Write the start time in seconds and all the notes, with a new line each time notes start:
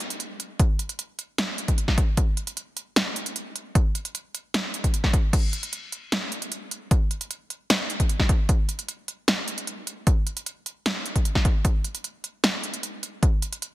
0.00 closed hi-hat
0.10 closed hi-hat
0.20 closed hi-hat
0.40 closed hi-hat
0.60 kick, closed hi-hat
0.79 closed hi-hat
0.89 closed hi-hat
0.99 closed hi-hat
1.19 closed hi-hat
1.38 snare, closed hi-hat
1.58 closed hi-hat
1.68 kick, closed hi-hat
1.78 closed hi-hat
1.88 kick, snare
1.98 kick, closed hi-hat
2.17 kick, closed hi-hat
2.37 closed hi-hat
2.47 closed hi-hat
2.57 closed hi-hat
2.77 closed hi-hat
2.96 snare, closed hi-hat
3.16 closed hi-hat
3.26 closed hi-hat
3.36 closed hi-hat
3.56 closed hi-hat
3.75 kick, closed hi-hat
3.95 closed hi-hat
4.05 closed hi-hat
4.15 closed hi-hat
4.35 closed hi-hat
4.54 snare, closed hi-hat
4.74 closed hi-hat
4.84 kick, closed hi-hat
4.94 closed hi-hat
5.04 kick, snare
5.13 kick, closed hi-hat
5.33 kick, closed hi-hat, crash
5.53 closed hi-hat
5.63 closed hi-hat
5.73 closed hi-hat
5.92 closed hi-hat
6.12 snare, closed hi-hat
6.32 closed hi-hat
6.42 closed hi-hat
6.52 closed hi-hat
6.71 closed hi-hat
6.91 kick, closed hi-hat
7.11 closed hi-hat
7.21 closed hi-hat
7.31 closed hi-hat
7.50 closed hi-hat
7.70 snare, closed hi-hat
7.90 closed hi-hat
8.00 kick, closed hi-hat
8.09 closed hi-hat
8.20 kick, snare
8.29 kick, closed hi-hat
8.49 kick, closed hi-hat
8.69 closed hi-hat
8.79 closed hi-hat
8.88 closed hi-hat
9.08 closed hi-hat
9.28 snare, closed hi-hat
9.48 closed hi-hat
9.58 closed hi-hat
9.67 closed hi-hat
9.87 closed hi-hat
10.07 kick, closed hi-hat
10.27 closed hi-hat
10.37 closed hi-hat
10.46 closed hi-hat
10.66 closed hi-hat
10.86 snare, closed hi-hat
11.06 closed hi-hat
11.16 kick, closed hi-hat
11.25 closed hi-hat
11.35 kick, snare
11.45 kick, closed hi-hat
11.65 kick, closed hi-hat
11.84 closed hi-hat
11.95 closed hi-hat
12.04 closed hi-hat
12.24 closed hi-hat
12.44 snare, closed hi-hat
12.63 closed hi-hat
12.74 closed hi-hat
12.83 closed hi-hat
13.03 closed hi-hat
13.23 kick, closed hi-hat
13.42 closed hi-hat
13.53 closed hi-hat
13.62 closed hi-hat